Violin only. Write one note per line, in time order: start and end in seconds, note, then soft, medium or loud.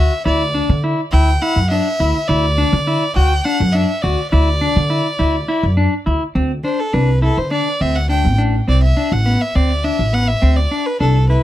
0.00 0.25 E5 loud
0.26 0.80 D5 medium
1.12 1.43 G5 loud
1.42 1.69 F#5 loud
1.70 2.30 E5 loud
2.28 3.15 D5 loud
3.16 3.46 G5 loud
3.44 3.74 F#5 medium
3.72 4.04 E5 medium
4.02 4.30 D5 medium
4.31 5.72 D5 medium
6.64 6.81 C5 medium
6.80 6.94 A4 medium
6.93 7.22 B4 medium
7.23 7.39 A4 medium
7.38 7.51 C5 medium
7.52 7.83 D5 medium
7.81 7.97 E5 medium
7.95 8.09 F#5 medium
8.10 8.37 G5 medium
8.69 8.82 D5 medium
8.83 9.14 E5 medium
9.12 9.43 F#5 medium
9.41 9.57 E5 medium
9.56 9.86 D5 medium
9.84 10.15 E5 medium
10.14 10.29 F#5 medium
10.28 10.58 E5 medium
10.56 10.88 D5 medium
10.86 11.00 B4 medium
11.00 11.28 A4 medium
11.29 11.43 B4 medium